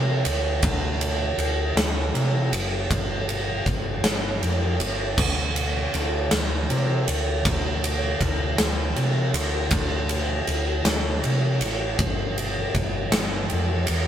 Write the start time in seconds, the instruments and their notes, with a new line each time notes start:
Already playing: fingered electric bass C3
0.25 fingered electric bass D2, ride
0.63 fingered electric bass D2, kick, ride
1.01 ride
1.38 fingered electric bass D2, ride
1.75 fingered electric bass D2, snare, ride
2.14 fingered electric bass C3, ride
2.52 fingered electric bass F#1, ride
2.90 fingered electric bass G1, kick, ride
3.29 ride
3.66 fingered electric bass G1, kick, ride
4.04 fingered electric bass G1, snare, ride
4.42 fingered electric bass F2, ride
4.79 fingered electric bass G1, ride
5.18 fingered electric bass D2, kick, crash
5.56 ride
5.94 fingered electric bass D2, ride
6.31 fingered electric bass D2, snare, ride
6.70 fingered electric bass C3, ride
7.08 fingered electric bass D2, ride
7.45 fingered electric bass D2, kick, ride
7.84 ride
8.21 fingered electric bass D2, kick, ride
8.58 fingered electric bass D2, snare, ride
8.96 fingered electric bass C3, ride
9.34 fingered electric bass D2, ride
9.71 fingered electric bass D2, kick, ride
10.09 ride
10.47 fingered electric bass D2, ride
10.85 fingered electric bass D2, snare, ride
11.24 fingered electric bass C3, ride
11.61 fingered electric bass A1, ride
11.99 fingered electric bass G1, kick, ride
12.38 ride
12.75 fingered electric bass G1, kick, ride
13.12 fingered electric bass G1, snare, ride
13.50 fingered electric bass F2, ride
13.87 fingered electric bass E2, ride